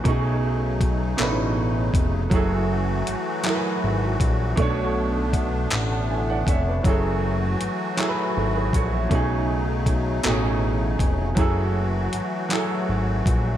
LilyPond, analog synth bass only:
\new Staff \with { instrumentName = "Analog synth bass" } { \clef bass \time 6/8 \key fis \minor \tempo 4. = 53 b,,4. a,,4 eis,,8 | fis,,4 gis,,8 r8 gis,,8 ais,,8 | b,,4. a,,4 eis,,8 | fis,,4 gis,,8 r8 gis,,8 ais,,8 |
b,,4. a,,4 eis,,8 | fis,,4 gis,,8 r8 gis,,8 ais,,8 | }